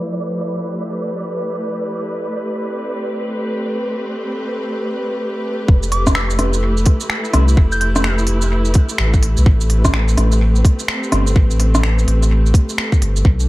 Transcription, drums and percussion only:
5.68 kick loud
5.83 shaker soft
5.92 open hi-hat medium
6.07 kick medium
6.07 cross-stick medium
6.07 shaker medium
6.15 finger snap loud
6.30 shaker soft
6.39 cross-stick medium
6.39 open hi-hat medium
6.53 shaker medium
6.77 shaker soft
6.86 kick loud
6.86 open hi-hat medium
7.01 shaker medium
7.10 finger snap loud
7.25 shaker soft
7.33 cross-stick medium
7.33 open hi-hat medium
7.48 shaker medium
7.57 kick loud
7.72 shaker soft
7.81 open hi-hat medium
7.96 cross-stick medium
7.96 shaker medium
8.04 finger snap loud
8.18 shaker soft
8.27 open hi-hat medium
8.42 shaker medium
8.65 shaker soft
8.74 kick loud
8.74 open hi-hat medium
8.89 shaker medium
8.98 finger snap loud
9.14 kick loud
9.14 shaker soft
9.23 open hi-hat medium
9.37 shaker medium
9.46 kick loud
9.61 shaker soft
9.70 open hi-hat medium
9.85 kick medium
9.85 cross-stick medium
9.85 shaker medium
9.94 finger snap loud
10.08 shaker soft
10.18 cross-stick medium
10.18 open hi-hat medium
10.32 shaker medium
10.56 shaker soft
10.65 kick loud
10.65 open hi-hat medium
10.79 shaker medium
10.88 finger snap loud
11.03 shaker soft
11.12 cross-stick medium
11.12 open hi-hat medium
11.27 shaker medium
11.36 kick loud
11.51 shaker soft
11.60 open hi-hat medium
11.75 cross-stick medium
11.75 shaker medium
11.84 finger snap loud
11.99 shaker soft
12.08 open hi-hat medium
12.23 shaker medium
12.46 shaker soft
12.54 kick loud
12.54 open hi-hat medium
12.69 shaker medium
12.78 finger snap loud
12.92 kick loud
12.92 shaker soft
13.02 open hi-hat medium
13.16 shaker medium
13.25 kick loud
13.40 shaker soft

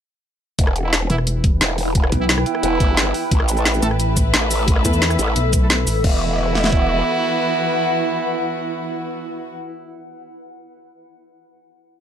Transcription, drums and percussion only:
0.59 kick loud
0.59 closed hi-hat loud
0.67 cross-stick medium
0.76 closed hi-hat medium
0.93 snare loud
0.93 closed hi-hat loud
1.10 closed hi-hat medium
1.18 cross-stick soft
1.27 closed hi-hat loud
1.44 kick loud
1.44 closed hi-hat medium
1.61 snare loud
1.61 closed hi-hat loud
1.70 cross-stick soft
1.78 open hi-hat medium
1.95 kick loud
1.95 closed hi-hat loud
2.04 cross-stick medium
2.12 kick medium
2.12 closed hi-hat medium
2.29 snare loud
2.29 closed hi-hat medium
2.38 cross-stick medium
2.46 closed hi-hat medium
2.55 cross-stick soft
2.63 closed hi-hat medium
2.80 kick loud
2.80 closed hi-hat medium
2.97 snare loud
2.97 closed hi-hat medium
3.14 open hi-hat medium
3.31 kick loud
3.31 closed hi-hat medium
3.40 cross-stick medium
3.48 closed hi-hat medium
3.48 cabasa medium
3.57 cabasa soft
3.65 snare loud
3.65 closed hi-hat medium
3.74 cabasa soft
3.83 closed hi-hat medium
3.83 cabasa medium
3.91 cross-stick soft
4.00 closed hi-hat medium
4.00 cabasa soft
4.17 kick loud
4.17 closed hi-hat medium
4.17 cabasa medium
4.34 snare loud
4.34 closed hi-hat medium
4.42 cross-stick soft
4.51 open hi-hat medium
4.51 cabasa medium
4.68 kick loud
4.68 closed hi-hat medium
4.76 cross-stick medium
4.85 kick medium
4.85 closed hi-hat medium
4.85 cabasa medium
4.93 cabasa soft
5.02 snare loud
5.02 closed hi-hat medium
5.10 cross-stick medium
5.10 cabasa soft
5.19 closed hi-hat medium
5.19 cabasa medium
5.27 cross-stick soft
5.36 closed hi-hat medium
5.36 cabasa soft
5.53 kick loud
5.53 closed hi-hat medium
5.53 cabasa medium
5.70 snare loud
5.70 closed hi-hat medium
5.87 open hi-hat medium
5.87 cabasa medium
6.04 kick loud
6.04 crash medium
6.55 snare medium
6.64 snare medium
6.72 kick medium

